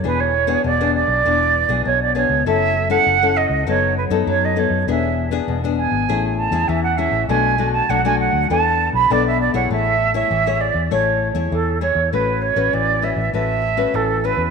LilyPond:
<<
  \new Staff \with { instrumentName = "Flute" } { \time 4/4 \key a \major \tempo 4 = 99 b'16 cis''8. d''8 d''4. cis''16 d''16 cis''8 | e''8. fis''8. dis''8 cis''8 b'8 cis''16 dis''16 cis''8 | e''8. r8. gis''4 a''8 e''16 fis''16 e''8 | gis''8. a''16 fis''16 gis''16 fis''8 a''8. b''16 d''16 e''16 d''16 fis''16 |
e''8. e''8. d''8 cis''4 a'8 cis''8 | b'8 cis''8 d''8 e''8 e''4 a'8 b'8 | }
  \new Staff \with { instrumentName = "Nylon-string guitar" } { \time 4/4 \key a \major << { <b d' gis'>8 r16 <b d' gis'>8 <b d' gis'>8. <b d' gis'>8 r16 <b d' gis'>8. <b d' gis'>8 | <cis' e' a'>8 r16 <cis' e' a'>8 <cis' e' a'>8. <b dis' a'>8 r16 <b dis' a'>8. <b dis' a'>8 | <b d' gis'>8. <b d' gis'>8 <b d' gis'>8. <cis' e' gis'>8. <cis' e' gis'>8. <cis' e' gis'>8 | <a d' fis'>8 <a d' fis'>8 <a d' fis'>16 <a d' fis'>8. <b d' a'>4 <b d' a'>8. <e' gis' cis''>16~ |
<e' gis' cis''>8 r16 <e' gis' cis''>8 <e' gis' cis''>8. <e' gis' cis''>8. <e' gis' cis''>8. <e' gis' cis''>16 r16 | <cis' fis' b'>8. <cis' fis' b'>8. <cis' fis' b'>16 r16 <cis' fis' b'>8 r16 <cis' fis' b'>8. <cis' fis' b'>8 | } \\ { e4 b,4 e4 b,4 | fis4 cis4 fis4 fis4 | e4 b,4 a4 e4 | b,4 fis4 e4 b,4 |
a4 e4 a4 e4 | a4 e4 a4 e4 | } >> }
  \new Staff \with { instrumentName = "Fingered electric bass" } { \clef bass \time 4/4 \key a \major e,,4 e,,8. b,,16 e,,8. b,,16 b,,8. cis,16 | fis,,4 fis,,8. cis,16 fis,,8. fis,16 fis,8. fis,16 | e,,4 e,,8. gis,,16 a,,8. e,16 e,8. a,,16 | b,,4 b,,8. d,16 e,8. b,,16 b,,8. b,,16 |
a,,4 a,,8. e,16 a,,8. e,16 e,8. e,16 | a,,8. a,,16 a,,8. a,,16 a,,4 a,,8. e,16 | }
>>